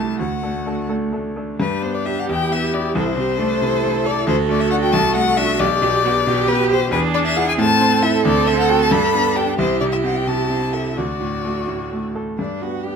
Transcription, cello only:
Already playing: A3
1.59 D4
2.27 E4
2.95 A4
3.17 G4
3.39 A4
4.27 A4
5.60 G4
5.83 G4
6.06 F#4
6.27 G4
6.93 G#4
7.59 A4
9.58 G4
10.97 F#4
12.38 D4
12.62 F#4
12.84 G4

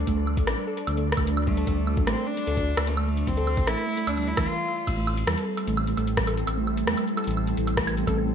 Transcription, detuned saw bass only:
0.07 D2
0.47 A1
0.87 D2
1.17 D2
1.67 D2
2.07 A1
2.47 D2
2.77 D2
3.27 D2
3.67 A1
4.07 D2
4.37 D2
4.87 A1
5.27 E2
5.67 A1
5.97 A1
6.47 A1
6.87 E2
7.27 A1
7.57 A1
8.07 A1

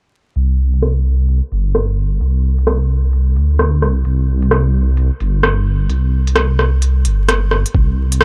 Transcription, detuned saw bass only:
0.36 C2
1.52 G1
2.21 C2
3.36 D2
3.82 C2
4.06 C2
5.20 G1
5.89 C2
7.06 G1
7.75 C2

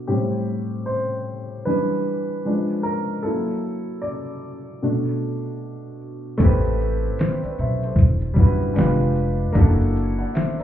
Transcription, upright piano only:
Already playing: B2 A3 D4
0.07 A2 G3 C4 G4
0.86 C5
1.65 E3 G3 D4 B4
2.45 F3 G#3 D4
2.83 A#4
3.23 F#3 A#3 E4 A4
4.02 D5
4.82 B2 A3 D4
6.38 A3 C4 E4
6.42 G4 B4
7.19 A4 C5
7.44 B4 D5
7.60 C5 E5
7.84 A4 C5
8.34 G3 D4 E4
8.38 F#4 B4
8.74 G#3 D4 F4
8.78 G4 B4
9.52 A#3 D4 E4
9.57 F#4 A4
10.19 D5 F#5
10.34 C5 E5
10.59 A#4 D5

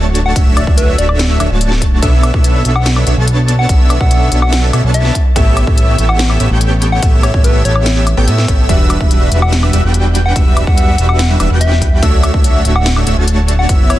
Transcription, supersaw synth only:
Already playing: A3 D4 F#4 C#5 A5
0.36 A3 D4 F#4 C#5 E5
0.67 A3 D4 F#4 C#5 E5
0.98 A3 D4 F#4 C#5 E5
1.40 A3 D4 F#4 C#5 E5
1.51 A3 D4 F#4 C#5 A5
2.02 B3 D4 A4 C#5 E5
2.34 B3 D4 A4 C#5 E5
2.65 B3 D4 A4 C#5 E5
3.07 B3 D4 A4 C#5 E5
3.17 B3 D4 A4 C#5 A5
3.69 B3 D4 A4 C#5 E5
4.01 B3 D4 A4 C#5 E5
4.32 B3 D4 A4 C#5 E5
4.73 B3 D4 A4 C#5 E5
4.84 B3 D4 A4 C#5 A5
5.36 B3 G4 A4 C#5 E5
5.67 B3 G4 A4 C#5 E5
5.98 B3 G4 A4 C#5 E5
6.40 B3 G4 A4 C#5 E5
6.51 B3 G4 A4 C#5 G5
7.03 B3 G4 A4 C#5 E5
7.34 B3 G4 A4 C#5 E5
7.65 B3 G4 A4 C#5 E5
8.17 B3 G4 A4 C#5 G5
8.28 B3 G4 A4 C#5 E5
8.48 B3 G4 A4 C#5 E5
8.69 G3 D4 F#4 B4 E5
9.01 G3 D4 F#4 B4 E5
9.32 G3 D4 F#4 B4 E5
9.73 G3 D4 F#4 B4 E5
9.84 G3 D4 F#4 B4 G5
10.36 G3 D4 F#4 B4 E5
10.67 G3 D4 F#4 B4 E5
10.98 G3 D4 F#4 B4 E5
11.40 G3 D4 F#4 B4 E5
11.51 G3 D4 F#4 B4 G5
12.03 A3 D4 F#4 C#5 E5
12.34 A3 D4 F#4 C#5 E5
12.65 A3 D4 F#4 C#5 E5
13.07 A3 D4 F#4 C#5 E5
13.17 A3 D4 F#4 C#5 A5
13.69 B3 E4 F#4 C#5 E5

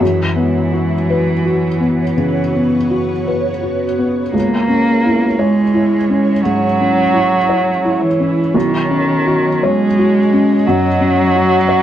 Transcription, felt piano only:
0.01 F#2
0.36 B3
0.72 F#4
1.09 B4
1.45 F#4
1.80 B3
2.17 C#3
2.54 B3
2.90 F#4
3.27 B4
3.62 F#4
3.98 B3
4.34 C#2
4.68 C#4
5.05 E4
5.39 C#5
5.74 E4
6.10 C#4
6.45 G#2
6.80 C#4
7.13 E4
7.49 C#5
7.85 E4
8.20 C#4
8.54 B1
8.91 C#4
9.27 F#4
9.63 C#5
9.98 F#4
10.33 C#4
10.68 F#2
11.00 C#4
11.35 F#4
11.69 C#5

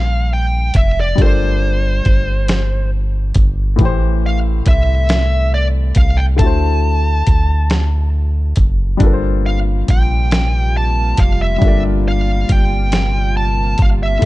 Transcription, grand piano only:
Already playing: G3 D4 F4 A4 A#4 C5
1.16 G3 D4 F4
1.21 A4 A#4 D5
3.76 A2 A3
3.81 E3 G4
3.85 C5
6.36 D3 A3
6.41 E4 F#4
6.46 C5
8.97 G3 D4 F4
9.03 A4 A#4 B4
9.13 C5
11.58 G3 D4 F4
11.64 A4 A#4 D5
14.19 A2 A3

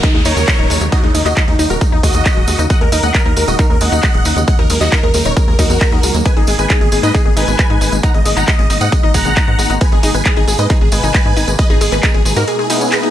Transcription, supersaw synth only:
0.03 D#4
0.15 D#4
0.26 A#4 C#5
0.92 F#4 D#5
1.03 D#4
1.14 D#4
1.25 F#4 D#5
1.37 D#4
1.48 D#4
1.59 D#4
1.70 F#4 A#4
1.81 D#4
1.92 D#4
2.03 F#4 D#5
2.70 D#5 F#5
2.81 A#4
2.92 A#4
3.03 D#5 F#5
3.14 A#4
3.25 A#4
3.37 A#4
3.48 F#4 D#5
3.59 A#4
3.70 A#4
3.81 D#5 F#5
4.47 D#5 F#5
4.59 A#4
4.70 A#4
4.81 F#4 D#5
4.92 A#4
5.03 A#4
5.14 A#4
5.25 A#4 C#5
5.37 A#4
5.48 A#4
5.59 F#4 A#4
6.25 B4 G#5
6.37 G#4
6.48 G#4
6.59 B4 G#5
6.70 G#4
6.81 G#4
6.92 G#4
7.03 B4 D#5
7.14 G#4
7.25 G#4
7.36 B4 G#5
8.03 F#5 A#5
8.14 D#5
8.26 D#5
8.37 F#5 A#5
8.48 D#5
8.59 D#5
8.70 D#5
8.81 D#5 F#5
8.92 D#5
9.03 D#5
9.14 F#5 A#5
9.81 B4 G#5
9.92 G#4
10.03 G#4
10.15 B4 G#5
10.25 G#4
10.37 G#4
10.48 G#4
10.59 B4 D#5
10.70 G#4
10.81 G#4
10.92 B4 G#5
11.59 B4 D#5
11.70 G#4
11.81 G#4
11.92 G#4 B4
12.03 G#4
12.15 G#4
12.25 G#4
12.37 F#4 A#4
12.48 G#4
12.59 G#4
12.70 B3 G#4

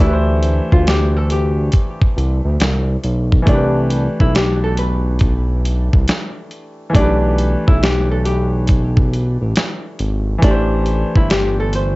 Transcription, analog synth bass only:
0.00 D2
0.73 D2
2.17 C2
2.45 D2
2.60 C2
3.04 B1
3.47 C2
4.20 B1
5.94 C2
6.95 B1
7.68 B1
9.41 A1
10.00 G#1
10.43 A1
11.16 G1

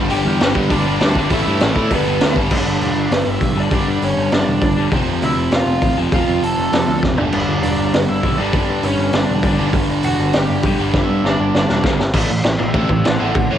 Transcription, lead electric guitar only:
0.11 G4 G5
0.70 D4 D5
1.34 E4 E5
1.63 E4 E5
1.94 B3 B4
2.52 D4 D5
2.82 D4 D5
3.13 B3 B4
3.29 E4 E5
3.60 D4 D5
3.74 D4 D5
4.04 C#4 C#5
4.33 D4 D5
4.65 D4 D5
5.24 E4 E5
5.54 F4 F5
6.14 F4 F5
6.44 A4 A5
7.33 D4 D5
7.63 D4 D5
7.94 B3 B4
8.09 E4 E5
8.37 D4 D5
8.53 D4 D5
8.85 C#4 C#5
9.16 D4 D5
9.45 D4 D5
10.05 F#4 F#5
10.37 G4 G5
10.97 E4 E5
11.25 D4 D5
12.60 G4 E5
12.73 G4 E5
12.90 G4 E5
13.06 A4 F#5
13.22 A4 F#5
13.35 A4 F#5
13.51 C#5

